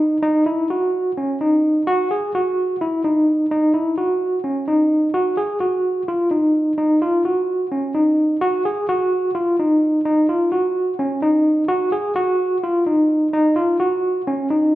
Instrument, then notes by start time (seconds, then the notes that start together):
tine electric piano
Already playing: D#4
0.22 D#4
0.46 E4
0.70 F#4
1.17 C#4
1.41 D#4
1.87 F#4
2.11 G#4
2.35 F#4
2.81 E4
3.04 D#4
3.51 D#4
3.74 E4
3.98 F#4
4.44 C#4
4.68 D#4
5.14 F#4
5.37 G#4
5.60 F#4
6.08 F4
6.31 D#4
6.78 D#4
7.02 F4
7.25 F#4
7.72 C#4
7.95 D#4
8.41 F#4
8.65 G#4
8.89 F#4
9.35 F4
9.59 D#4
10.05 D#4
10.29 F4
10.52 F#4
10.99 C#4
11.22 D#4
11.69 F#4
11.92 G#4
12.16 F#4
12.63 F4
12.87 D#4
13.33 D#4
13.56 F4
13.80 F#4
14.27 C#4
14.50 D#4